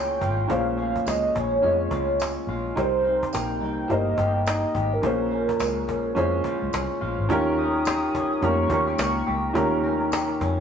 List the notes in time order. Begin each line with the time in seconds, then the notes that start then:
Already playing: C#2 A#2 G#3 C#4 F4 G#4 C5 C#5 G5
0.21 G#1 F4, cajon bass
0.39 cajon slap
0.47 A#1 A#2 C#4 F4 G#4 C5 F5, cajon bass
0.77 C#4 F5, cajon slap
0.96 cajon bass
1.06 C#2 G#3 D#5, cajon slap, tambourine
1.35 A#1 C#4 C#5, cajon bass
1.62 F2 G#3 C#4 F4 G#4 D#5, cajon slap
1.91 C#2 F4, cajon bass
2.20 C#4, cajon slap, tambourine
2.47 A#1 F4, cajon slap
2.67 cajon slap
2.76 C2 C3 D#4 G4 A#4 C5, cajon bass
3.04 D#4, cajon slap
3.23 cajon bass
3.33 A#1 A#3 G5, cajon slap, tambourine
3.61 C2 D#4, cajon slap
3.88 G1 A#3 D#4 G4 A#4 C5 D#5, cajon bass, cajon slap
4.17 G1 G4, cajon bass
4.46 D#4 D#5, cajon slap, tambourine
4.75 G#1 G4, cajon bass
4.92 A#4, cajon slap
5.02 A#1 A#2 C#4 F4 G#4 C5, cajon bass
5.31 C#4, cajon slap
5.49 cajon bass
5.60 C#2 G#3, cajon slap, tambourine
5.88 A#1 C#4, cajon bass
6.15 F2 G#3 C#4 F4 G#4 C5, cajon bass, cajon slap
6.44 F4, muted fingered electric bass stroke, cajon bass
6.62 C#2
6.73 C2 C#4, cajon slap, tambourine
7.01 A#1 F4, cajon slap
7.19 G#1
7.29 D#2 D#3 C#4 F4 G4 A#4, cajon bass
7.47 cajon slap
7.57 C#4 D#6, cajon slap
7.75 cajon slap
7.85 G4, cajon slap, tambourine
8.04 cajon slap
8.14 A#1 C#4, cajon bass
8.32 cajon slap
8.41 F2 A#3 C#4 F4 G4 A#4 C#6, cajon bass, cajon slap
8.70 D#2 C#4 F4 G4 A#4, cajon bass
8.87 G4, cajon slap
8.98 C#2 A#3, cajon slap, tambourine
9.03 C#6
9.15 cajon slap
9.26 C#2 G4, cajon slap
9.43 cajon slap
9.49 A#5
9.53 D#2 D#3 C#4 F4 G4 A#4, cajon bass
9.72 cajon slap
9.83 C#4, cajon slap
10.00 cajon slap
10.12 G4, cajon slap, tambourine
10.30 cajon slap
10.41 F2 C#4, cajon bass